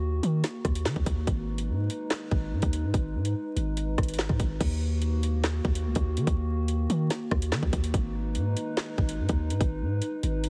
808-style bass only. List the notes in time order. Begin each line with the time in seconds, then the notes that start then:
Already playing: D#2
0.23 D#3
0.65 D#2
0.86 D#3
0.96 D#2
1.06 D#2
1.27 G#1
1.69 G#2
2.31 G#1
2.52 G#2
2.63 D#2
2.83 G#2
2.94 G#1
3.15 G#2
3.56 G#1
3.98 G#1
4.29 G#2
4.40 G#1
4.61 D#2
5.65 D#2
5.85 C#2
5.96 D#2
6.17 D#3
6.27 D#2
6.90 D#3
7.31 D#2
7.52 D#3
7.63 D#2
7.73 D#2
7.94 G#1
8.36 G#2
8.98 G#1
9.19 G#2
9.29 D#2
9.50 G#2
9.61 G#1
9.81 G#2
10.23 G#1